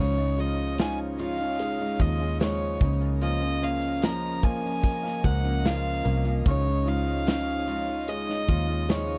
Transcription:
Already playing: C#2 C#3 F3 G#3
0.00 D#4 F4 C#5 D#5
0.17 G#3 D#4 F4
0.37 F3 G#3 D#4 F4 D#5, closed hi-hat
0.78 C#3 F3 G#3 C#4 D#4 F4 G#5, snare, closed hi-hat
1.18 F3 G#3 D#4 F4 F5, closed hi-hat
1.38 G#3 D#4 F4
1.59 G#3, closed hi-hat
1.79 G#3 D#4 F4
1.99 D#2 F3 G#3 D#4 F4 D#5, kick, closed hi-hat
2.20 G#3 D#4 F4
2.40 C#3 F3 G#3 D#4 F4 C#5, snare, closed hi-hat
2.80 C#2 C#3 F3 A#3 C#4 F4 A#4, kick, closed hi-hat
3.00 A#3 C#4 F4, closed hi-hat
3.21 C#3 F3 A#3 C#4 F4 D#5, closed hi-hat
3.41 A#3 C#4 F4
3.62 F3 A#3 C#4 F4 F5, closed hi-hat
3.82 closed hi-hat
4.02 C#3 F3 A#3 C#4 F4 A#5, snare, closed hi-hat
4.43 F3 A#3 C#4 F4 G#5, kick, closed hi-hat
4.63 A#3 C#4 F4
4.83 kick, closed hi-hat
5.03 A#3 C#4 F4, snare
5.24 C#2 F3 A#3 C#4 F4 F#5, kick, closed hi-hat
5.44 A#3 C#4 F4
5.64 C#3 F3 A#3 C#4 F4 F5, snare, closed hi-hat
6.05 C2 F3 A#3 C#4 F4, closed hi-hat
6.25 A#3 C#4 F4, closed hi-hat
6.46 C#2 C#3 F3 G#3 D#4 F4 C#5, kick, closed hi-hat
6.66 G#3 D#4 F4
6.86 F3 G#3 D#4 F4 F5, closed hi-hat
7.06 closed hi-hat
7.26 C#3 F3 G#3 C#4 D#4 F4, snare, closed hi-hat
7.67 F3 G#3 D#4 F4, closed hi-hat
7.87 G#3 D#4 F4
8.08 G#3 D#5, closed hi-hat
8.28 G#3 D#4 F4, snare
8.48 D#2 F3 G#3 D#4 F4, kick, closed hi-hat
8.68 G#3 D#4 F4
8.89 C#3 F3 G#3 D#4 F4 C#5, snare, closed hi-hat

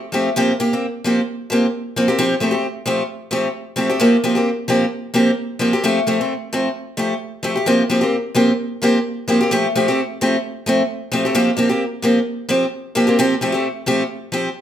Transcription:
0.12 F3 A3 C4 G4
0.36 F3 A#3 C4 G4
0.60 A#3 G4, muted steel-string acoustic guitar stroke
0.73 A#3 C4
1.04 F3 A#3 C4 G4
1.50 F3 A#3 C4 G4
1.96 F3 A#3 C4
2.08 A#3 C4 G4
2.19 F3 C4 G4, muted steel-string acoustic guitar stroke
2.40 F3 A3 C4 G4
2.51 C4 G4
2.86 F3 A3 C4 G4
3.31 F3 A3 C4 G4
3.76 F3 A3 C4 G4
3.90 A3 C4 G4
4.00 F3 A#3 C4 G4
4.24 F3 A#3 C4 G4
4.35 A#3 C4 G4
4.68 F3 A#3 C4 G4
5.14 F3 A#3 C4 G4
5.59 F3 A#3 C4 G4
5.73 A#3 C4 G4
5.84 F3 A3 C4 G4
6.07 F3 A3 C4 G4
6.21 A3 C4
6.53 F3 A3 C4
6.97 F3 A3 G4
7.43 F3 A3 C4 G4
7.55 G4, muted steel-string acoustic guitar stroke
7.66 F3 A#3 C4 G4
7.90 F3 A#3 C4 G4
8.01 A#3 C4 G4
8.35 F3 A#3 C4 G4
8.82 F3 A#3 C4 G4
9.28 F3 A#3 C4 G4
9.41 A#3 C4 G4
9.51 F3 A3 G4, muted steel-string acoustic guitar stroke
9.75 F3 A3 C4 G4
9.88 A3 C4 G4
10.21 F3 A3 C4 G4
10.66 F3 A3 C4, muted steel-string acoustic guitar stroke
11.12 F3 A3 C4 G4
11.25 A3 C4 G4
11.35 F3 A#3 C4 G4
11.57 F3 A#3 C4 G4
11.69 A#3 C4 G4
12.02 F3 A#3 C4 G4
12.49 F3 C4 G4, muted steel-string acoustic guitar stroke
12.95 F3 A#3 C4 G4
13.07 A#3 C4 G4
13.19 F3 C4 G4, muted steel-string acoustic guitar stroke
13.41 F3 A3 C4 G4
13.52 A3 C4 G4
13.86 F3 A3 C4 G4
14.32 F3 C4 G4

